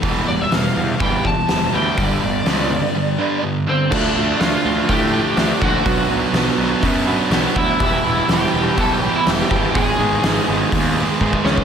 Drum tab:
CC |----------------|----------------|x---------------|----------------|
HH |o---o---o---o---|o---o-----------|----o---o---o---|o---o---o---o---|
SD |----o-------o---|----o-----------|----o-------o---|----o-------o---|
BD |o-------o-o-----|o---------------|o-------o-----o-|o-------o-----o-|

CC |----------------|----------------|
HH |o---o---o---o---|o---o---o-------|
SD |----o-------o---|----o---------o-|
BD |o-------o-----o-|o-------o---oo-o|